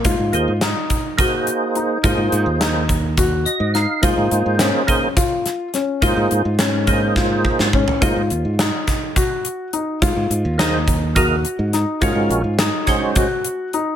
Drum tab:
HH |x-x-x-x-x-x-x-|x-x-x-x-x-x-x-|x-x-x-x-x-x-x-|x-x-x-x-------|
SD |----o---------|----o-------o-|----o-----o-o-|----o---o--o--|
FT |--------------|--------------|--------------|-------------o|
BD |o-----o-o-----|o-----o-o-----|o-----o-o-----|o-----o-o-o-o-|

HH |x-x-x-x-x-x-x-|x-x-x-x-x-x-x-|x-x-x-x-x-x-x-|
SD |----o-o-------|----o-------o-|----o-o-------|
FT |--------------|--------------|--------------|
BD |o-----o-o-----|o-----o-o-----|o-----o-o-----|